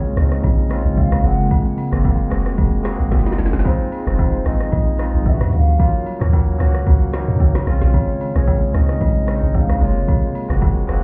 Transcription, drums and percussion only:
0.05 shaker
0.17 cross-stick, open hi-hat, shaker
0.32 cross-stick, shaker
0.43 kick, high agogo, shaker
0.70 cross-stick, open hi-hat, high agogo, shaker
0.85 shaker
0.97 kick, low woodblock, shaker
1.12 cross-stick, high agogo, shaker
1.24 open hi-hat, shaker
1.39 shaker
1.51 kick, high agogo, shaker
1.66 shaker
1.78 open hi-hat, high agogo, shaker
1.92 cross-stick, shaker
2.04 kick, high agogo, low woodblock, shaker
2.19 shaker
2.31 cross-stick, open hi-hat, shaker
2.46 cross-stick, shaker
2.58 kick, high agogo, shaker
2.84 cross-stick, snare, open hi-hat, high agogo, shaker
3.00 shaker
3.11 kick, snare, low woodblock, shaker
3.19 snare
3.26 snare, high agogo, shaker
3.32 snare
3.38 snare, open hi-hat, shaker
3.46 snare
3.53 snare, shaker
3.59 snare
3.65 kick, high agogo, shaker
3.80 shaker
3.92 open hi-hat, high agogo, shaker
4.07 cross-stick, shaker
4.19 kick, high agogo, low woodblock, shaker
4.33 shaker
4.46 cross-stick, open hi-hat, shaker
4.60 cross-stick, shaker
4.72 kick, high agogo, shaker
4.99 cross-stick, open hi-hat, high agogo, shaker
5.14 shaker
5.26 kick, low woodblock, shaker
5.41 cross-stick, high agogo, shaker
5.53 open hi-hat, shaker
5.68 shaker
5.79 kick, high agogo, shaker
5.94 shaker
6.06 open hi-hat, high agogo, shaker
6.21 cross-stick, shaker
6.33 kick, high agogo, low woodblock, shaker
6.48 shaker
6.60 cross-stick, open hi-hat, shaker
6.75 cross-stick, shaker
6.86 kick, high agogo, shaker
7.13 cross-stick, snare, open hi-hat, high agogo, shaker
7.28 shaker
7.40 kick, low woodblock, shaker
7.55 cross-stick, snare, high agogo, shaker
7.67 cross-stick, open hi-hat, shaker
7.82 snare, shaker
7.94 kick, high agogo, shaker
8.09 shaker
8.21 open hi-hat, high agogo, shaker
8.35 cross-stick, shaker
8.48 kick, high agogo, low woodblock, shaker
8.62 shaker
8.74 cross-stick, open hi-hat, shaker
8.89 cross-stick, shaker
9.01 kick, high agogo, shaker
9.27 cross-stick, open hi-hat, high agogo, shaker
9.43 shaker
9.54 kick, low woodblock, shaker
9.69 cross-stick, high agogo, shaker
9.82 open hi-hat, shaker
9.97 shaker
10.08 kick, high agogo, shaker
10.23 shaker
10.35 open hi-hat, high agogo, shaker
10.50 cross-stick, shaker
10.62 kick, high agogo, low woodblock, shaker
10.76 shaker
10.89 cross-stick, open hi-hat, shaker

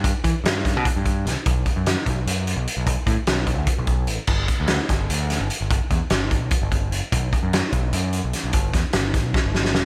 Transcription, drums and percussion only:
0.04 kick, closed hi-hat
0.24 kick, closed hi-hat
0.45 snare, closed hi-hat
0.65 kick, snare, closed hi-hat
0.85 kick, closed hi-hat
1.05 kick, closed hi-hat
1.27 snare, closed hi-hat
1.46 kick, closed hi-hat
1.66 kick, closed hi-hat
1.86 snare, closed hi-hat
2.06 kick, closed hi-hat
2.27 closed hi-hat
2.47 closed hi-hat
2.67 closed hi-hat
2.87 kick, closed hi-hat
3.07 kick, closed hi-hat
3.27 snare, closed hi-hat
3.47 kick, closed hi-hat
3.67 kick, closed hi-hat
3.87 kick, closed hi-hat
4.07 closed hi-hat
4.27 kick, crash
4.48 kick, closed hi-hat
4.67 snare, closed hi-hat
4.89 kick, snare, closed hi-hat
5.10 closed hi-hat
5.30 snare, closed hi-hat
5.50 closed hi-hat
5.70 kick, closed hi-hat
5.91 kick, closed hi-hat
6.10 snare, closed hi-hat
6.31 kick, closed hi-hat
6.51 kick, closed hi-hat
6.72 kick, closed hi-hat
6.92 closed hi-hat
7.12 kick, closed hi-hat
7.33 kick, closed hi-hat
7.53 snare, closed hi-hat
7.72 kick, closed hi-hat
7.93 closed hi-hat
8.13 closed hi-hat
8.33 snare, closed hi-hat
8.53 kick, closed hi-hat
8.74 kick, snare, closed hi-hat
8.93 snare, closed hi-hat
9.14 kick, snare, closed hi-hat
9.34 kick, snare
9.55 snare
9.65 snare
9.75 snare

